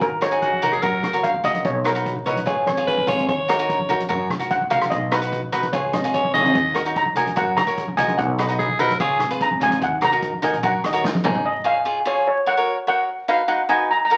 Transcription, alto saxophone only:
0.42 0.74 F#4 medium
0.72 0.84 G#4 medium
0.82 1.14 A#4 medium
2.87 3.06 B4 loud
3.08 3.27 C#5 loud
3.28 4.06 C#5 medium
6.14 6.33 C#5 loud
6.34 6.82 D#5 loud
8.59 8.81 G#4 loud
8.80 8.99 A#4 loud
9.00 9.29 G#4 medium

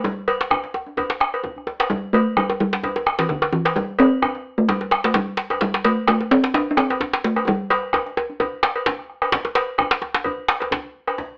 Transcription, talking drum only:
0.05 1.67 G3 medium
1.90 2.11 G3 medium
2.13 2.38 A3 medium
2.37 2.60 G3 medium
2.60 3.15 G3 medium
3.19 3.24 E3 medium
3.30 3.54 D3 medium
3.53 3.77 E3 medium
3.76 3.99 G3 medium
4.00 4.59 C4 loud
4.58 4.70 A3 medium
4.69 5.06 G3 medium
5.05 5.16 A3 medium
5.15 5.51 G3 medium
5.62 5.87 G3 medium
5.85 6.08 A3 medium
6.08 6.33 A3 medium
6.31 6.56 C4 medium
6.54 6.71 D4 medium
6.71 6.79 D4 medium
6.77 7.24 C4 medium
7.25 7.35 A3 medium
7.48 9.06 G3 medium

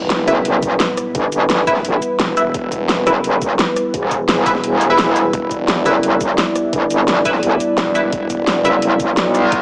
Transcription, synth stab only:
0.28 0.34 E4 medium
0.28 0.34 B4 medium
0.28 0.34 E5 loud
1.67 1.73 E4 loud
1.67 1.73 B4 medium
1.67 1.73 E5 loud
2.37 2.43 E4 medium
2.37 2.43 B4 medium
2.37 2.43 E5 medium
3.07 3.13 E4 medium
3.07 3.13 B4 medium
3.07 3.13 E5 loud
4.46 4.52 E4 loud
4.46 4.52 B4 medium
4.46 4.52 E5 loud
4.90 5.84 E4 loud
4.90 5.84 B4 medium
4.90 5.84 E5 loud
5.86 5.92 E4 medium
5.86 5.92 B4 medium
5.86 5.92 E5 loud
7.25 7.31 E4 loud
7.25 7.31 B4 medium
7.25 7.31 E5 loud
7.95 8.01 E4 medium
7.95 8.01 B4 medium
7.95 8.01 E5 medium
8.65 8.71 E4 medium
8.65 8.71 B4 medium
8.65 8.71 E5 loud

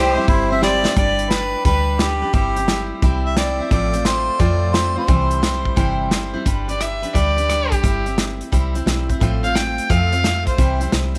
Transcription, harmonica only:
0.00 0.27 G4 medium
0.29 0.50 E4 medium
0.52 0.62 E5 loud
0.63 0.95 D5 loud
0.98 1.32 D5 medium
1.31 1.65 B4 medium
1.66 2.01 B4 medium
2.00 2.34 G4 medium
2.35 2.87 G4 medium
3.26 3.36 E5 medium
3.37 3.69 D5 medium
3.72 4.08 D5 medium
4.06 4.42 C5 medium
4.40 4.76 D5 medium
4.75 4.97 C5 medium
4.98 6.08 C5 medium

